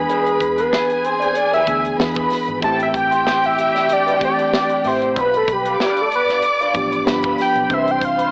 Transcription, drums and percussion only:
0.09 closed hi-hat
0.26 closed hi-hat
0.40 kick, closed hi-hat
0.58 closed hi-hat
0.73 snare
0.90 closed hi-hat
1.05 closed hi-hat
1.22 closed hi-hat
1.35 closed hi-hat
1.53 closed hi-hat
1.67 kick, closed hi-hat
1.85 closed hi-hat
2.00 snare
2.15 kick, closed hi-hat
2.30 snare, open hi-hat
2.48 closed hi-hat
2.62 kick, closed hi-hat
2.80 closed hi-hat
2.94 kick, closed hi-hat
3.12 closed hi-hat
3.27 snare
3.43 closed hi-hat
3.58 closed hi-hat
3.76 snare, closed hi-hat
3.89 closed hi-hat
4.08 closed hi-hat
4.21 kick, closed hi-hat
4.39 closed hi-hat
4.53 snare
4.69 closed hi-hat
4.84 open hi-hat
5.02 closed hi-hat
5.16 kick, closed hi-hat
5.34 closed hi-hat
5.48 kick, closed hi-hat
5.65 closed hi-hat
5.80 snare
5.97 closed hi-hat
6.12 closed hi-hat
6.29 snare, closed hi-hat
6.42 closed hi-hat
6.61 closed hi-hat
6.74 kick, closed hi-hat
6.92 closed hi-hat
7.07 snare
7.22 kick, closed hi-hat
7.38 snare, open hi-hat
7.55 closed hi-hat
7.70 kick, closed hi-hat
7.87 closed hi-hat
8.01 kick, closed hi-hat
8.19 closed hi-hat

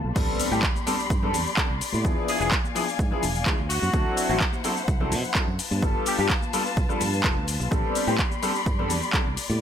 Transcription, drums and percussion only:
0.05 tambourine
0.16 kick, crash, tambourine, shaker
0.27 tambourine
0.39 open hi-hat, tambourine, shaker
0.51 tambourine, shaker
0.63 kick, clap, shaker
0.76 tambourine, high conga, shaker
0.87 open hi-hat, tambourine, shaker
0.98 tambourine, shaker
1.10 kick, tambourine, shaker
1.22 tambourine, low conga
1.33 open hi-hat, tambourine, high conga, low conga, shaker
1.46 tambourine, shaker
1.57 kick, clap, tambourine, shaker
1.70 tambourine
1.81 open hi-hat, tambourine, shaker
1.93 tambourine, high conga, shaker
2.05 kick, tambourine, shaker
2.18 tambourine
2.28 open hi-hat, tambourine, shaker
2.41 tambourine, shaker
2.52 kick, clap, shaker
2.64 tambourine, high conga, shaker
2.75 open hi-hat, tambourine, shaker
2.88 tambourine, shaker
2.99 kick, tambourine, shaker
3.11 tambourine, low conga
3.22 open hi-hat, tambourine, high conga, low conga, shaker
3.35 tambourine, shaker
3.45 kick, clap, tambourine, shaker
3.58 tambourine
3.70 open hi-hat, tambourine, shaker
3.82 tambourine, high conga, shaker
3.94 kick, tambourine, shaker
4.06 tambourine
4.17 open hi-hat, tambourine, shaker
4.30 tambourine, shaker
4.40 kick, clap, shaker
4.53 tambourine, high conga, shaker
4.64 open hi-hat, tambourine, shaker
4.77 tambourine, shaker
4.88 kick, tambourine, shaker
5.00 tambourine, low conga
5.12 open hi-hat, tambourine, high conga, low conga, shaker
5.24 tambourine, shaker
5.35 kick, clap, tambourine, shaker
5.48 tambourine
5.59 open hi-hat, tambourine, shaker
5.71 tambourine, high conga, shaker
5.82 kick, tambourine, shaker
5.95 tambourine
6.06 open hi-hat, tambourine, shaker
6.19 tambourine, shaker
6.29 kick, clap, tambourine, shaker
6.42 tambourine, high conga, shaker
6.53 open hi-hat, tambourine, shaker
6.66 tambourine, shaker
6.77 kick, tambourine, shaker
6.89 tambourine, low conga, shaker
7.00 open hi-hat, tambourine, high conga, low conga, shaker
7.14 tambourine, shaker
7.24 kick, clap, tambourine, shaker
7.37 tambourine
7.48 open hi-hat, tambourine, shaker
7.60 tambourine, high conga, shaker
7.72 kick, tambourine, shaker
7.84 tambourine
7.95 open hi-hat, tambourine, shaker
8.08 tambourine, shaker
8.18 kick, clap, shaker
8.31 tambourine, high conga, shaker
8.42 open hi-hat, tambourine, shaker
8.55 tambourine, shaker
8.66 kick, tambourine, shaker
8.79 tambourine, low conga
8.90 open hi-hat, tambourine, high conga, low conga, shaker
9.03 tambourine, shaker
9.13 kick, clap, shaker
9.26 tambourine
9.37 open hi-hat, tambourine, shaker
9.50 tambourine, high conga, shaker

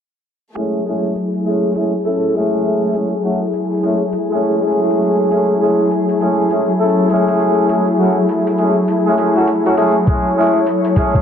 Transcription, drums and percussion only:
0.56 closed hi-hat
1.15 closed hi-hat
1.34 closed hi-hat
1.45 closed hi-hat
1.75 closed hi-hat
2.04 closed hi-hat
2.34 closed hi-hat
2.53 closed hi-hat
2.64 closed hi-hat
2.74 closed hi-hat
2.84 closed hi-hat
2.94 closed hi-hat
3.53 closed hi-hat
3.72 closed hi-hat
3.74 closed hi-hat
3.77 closed hi-hat
3.80 closed hi-hat
3.83 closed hi-hat
3.88 closed hi-hat
3.92 closed hi-hat
3.97 closed hi-hat
4.13 closed hi-hat
4.42 closed hi-hat
4.72 closed hi-hat
4.90 closed hi-hat
5.02 closed hi-hat
5.32 closed hi-hat
5.91 closed hi-hat
6.09 closed hi-hat
6.21 closed hi-hat
6.51 closed hi-hat
6.89 closed hi-hat
7.10 closed hi-hat
7.28 closed hi-hat
7.40 closed hi-hat
7.69 closed hi-hat
8.29 closed hi-hat
8.47 closed hi-hat
8.58 closed hi-hat
8.88 closed hi-hat
9.18 closed hi-hat
9.47 closed hi-hat
9.66 closed hi-hat
9.77 closed hi-hat
10.07 kick, closed hi-hat
10.66 closed hi-hat
10.85 closed hi-hat
10.96 kick, closed hi-hat
11.14 kick

